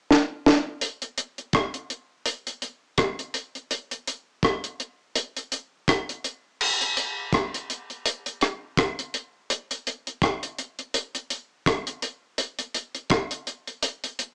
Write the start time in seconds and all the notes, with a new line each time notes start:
0.11 snare
0.46 snare
0.81 closed hi-hat
1.02 closed hi-hat
1.18 closed hi-hat
1.38 closed hi-hat
1.53 kick, cross-stick, closed hi-hat
1.74 closed hi-hat
1.90 closed hi-hat
2.26 closed hi-hat
2.47 closed hi-hat
2.62 closed hi-hat
2.98 kick, cross-stick, closed hi-hat
3.19 closed hi-hat
3.34 closed hi-hat
3.55 closed hi-hat
3.71 closed hi-hat
3.91 closed hi-hat
4.07 closed hi-hat
4.43 kick, cross-stick, closed hi-hat
4.64 closed hi-hat
4.80 closed hi-hat
5.15 closed hi-hat
5.37 closed hi-hat
5.52 closed hi-hat
5.88 kick, cross-stick, closed hi-hat
6.09 closed hi-hat
6.24 closed hi-hat
6.61 crash
6.81 closed hi-hat
6.97 closed hi-hat
7.33 kick, cross-stick, closed hi-hat
7.54 closed hi-hat
7.70 closed hi-hat
7.90 closed hi-hat
8.06 closed hi-hat
8.26 closed hi-hat
8.41 cross-stick, closed hi-hat
8.77 kick, cross-stick, closed hi-hat
8.99 closed hi-hat
9.14 closed hi-hat
9.50 closed hi-hat
9.71 closed hi-hat
9.87 closed hi-hat
10.07 closed hi-hat
10.22 kick, cross-stick, closed hi-hat
10.43 closed hi-hat
10.58 closed hi-hat
10.79 closed hi-hat
10.94 closed hi-hat
11.15 closed hi-hat
11.30 closed hi-hat
11.66 kick, cross-stick, closed hi-hat
11.87 closed hi-hat
12.02 closed hi-hat
12.38 closed hi-hat
12.59 closed hi-hat
12.74 closed hi-hat
12.95 closed hi-hat
13.10 kick, cross-stick, closed hi-hat
13.31 closed hi-hat
13.47 closed hi-hat
13.67 closed hi-hat
13.83 closed hi-hat
14.04 closed hi-hat
14.19 closed hi-hat